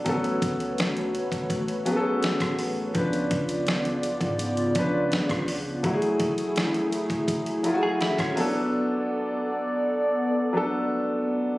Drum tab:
HH |xxxxxxxxxxx-xxo-|xxxxxxxxxxx-xxo-|xxxxxxxxxxx-xxo-|----------------|
SD |----o-------or--|----o-------or--|----o-------or--|----------------|
BD |o-o----oo----o--|o-o----o--o--o--|o-o----oo----o--|----------------|